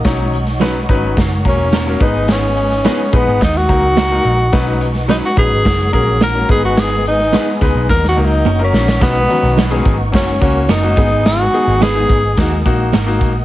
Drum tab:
HH |x-xxx-x-xxx-x-x-|x-xxx-x-xxx-x-x-|x-xxx-x-xxx-x-x-|x-xxx-x---------|
SD |o--oo---o---o---|o--oo---o---o---|o--oo---o---o---|o--oo---oo----oo|
BD |o-----o-o-o---o-|------o-o-o-----|o-----o-o-o---o-|------o-o-------|

HH |x-x-x-x-x-x-x-x-|x-x-x-x-x-x-x-x-|
SD |o--oo---o---o---|o--oo---o---o---|
BD |o-----o-o-o---o-|------o-o-o---o-|